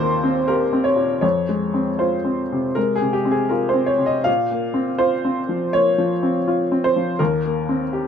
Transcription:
0.00 1.25 D#2 medium
0.00 0.96 A#2 medium
0.00 1.25 A#3 medium
0.00 0.23 C4 medium
0.00 0.49 G4 medium
0.00 0.48 A#4 medium
0.00 0.48 C5 medium
0.00 1.25 D#5 loud
0.23 0.63 C4 medium
0.48 0.88 G4 soft
0.48 0.85 A#4 medium
0.73 1.13 C4 soft
0.84 1.20 C#5 medium
0.96 1.22 A#2 soft
1.21 2.71 F2 medium
1.21 1.99 C#5 medium
1.49 1.90 G#3 soft
1.74 2.15 C4 soft
1.99 2.41 F4 soft
1.99 2.75 C5 medium
2.25 2.65 C4 soft
2.52 2.92 C3 soft
2.75 3.16 G#3 soft
2.75 2.94 A#4 medium
2.96 3.14 G#4 medium
3.02 3.41 C3 soft
3.13 3.32 G4 medium
3.25 3.66 C4 soft
3.31 3.50 G#4 medium
3.49 3.91 F4 soft
3.49 3.69 A#4 medium
3.69 3.88 C5 medium
3.74 4.15 C4 soft
3.86 4.07 C#5 medium
3.99 4.25 C3 soft
4.06 4.26 D#5 medium
4.24 5.69 A#2 medium
4.24 4.99 F5 medium
4.51 4.91 A#3 soft
4.74 5.14 C4 soft
4.99 5.39 F4 soft
4.99 5.73 C5 medium
5.25 5.64 C4 soft
5.49 5.88 F3 soft
5.73 6.13 A#3 soft
5.73 6.83 C#5 medium
5.98 6.37 F3 soft
6.23 6.62 C4 soft
6.48 6.86 F4 soft
6.72 7.10 C4 soft
6.84 7.20 C5 medium
6.96 7.20 F3 soft
7.19 8.07 D#2 medium
7.19 8.07 A#4 medium
7.45 7.83 A#3 soft
7.69 8.07 C4 soft
7.93 8.07 G4 soft

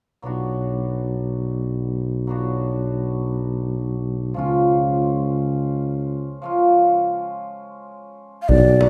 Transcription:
0.22 4.34 B1 medium
0.22 2.26 F#3 soft
0.22 2.29 B3 soft
0.22 2.30 D4 soft
0.22 2.30 F#4 medium
2.27 4.43 F#3 soft
2.27 6.43 B3 soft
2.27 4.43 D4 soft
2.27 4.40 F#4 medium
4.34 6.40 C#2 medium
4.34 6.40 F3 medium
4.34 6.42 G#3 soft
4.34 6.43 C#4 soft
4.39 6.45 F4 medium
6.42 8.54 F3 soft
6.42 8.54 G#3 soft
6.42 8.88 C#4 soft
6.42 8.87 F4 medium
8.42 8.51 F5 medium
8.49 8.85 B1 loud
8.49 8.89 D5 medium
8.49 davul low medium
8.81 8.89 F#3 medium
8.81 8.89 B3 soft
8.81 8.89 D4 soft
8.81 8.89 F#4 medium
8.81 davul high medium

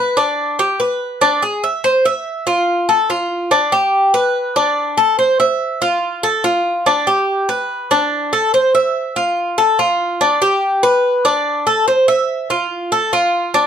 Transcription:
0.00 0.17 B4 medium
0.17 0.58 D4 medium
0.59 0.79 G4 medium
0.80 1.20 B4 medium
1.21 1.42 D4 medium
1.42 1.63 G#4 medium
1.64 1.84 E5 medium
1.84 2.05 C5 medium
2.05 2.46 E5 medium
2.47 2.88 F4 medium
2.89 3.09 A4 medium
3.10 3.50 F4 medium
3.51 3.72 D4 medium
3.72 4.13 G4 medium
4.14 4.55 B4 medium
4.56 4.97 D4 medium
4.97 5.18 A4 medium
5.19 5.39 C5 medium
5.40 5.80 E5 medium
5.82 6.22 F4 medium
6.23 6.44 A4 medium
6.44 6.85 F4 medium
6.86 7.07 D4 medium
7.07 7.48 G4 medium
7.49 7.89 B4 medium
7.91 8.31 D4 medium
8.33 8.53 A4 medium
8.54 8.74 C5 medium
8.75 9.15 E5 medium
9.16 9.57 F4 medium
9.58 9.78 A4 medium
9.79 10.19 F4 medium
10.21 10.41 D4 medium
10.42 10.82 G4 medium
10.83 11.24 B4 medium
11.25 11.66 D4 medium
11.67 11.87 A4 medium
11.88 12.08 C5 medium
12.08 12.49 E5 medium
12.50 12.91 F4 medium
12.92 13.12 A4 medium
13.13 13.53 F4 medium
13.54 13.67 D4 medium

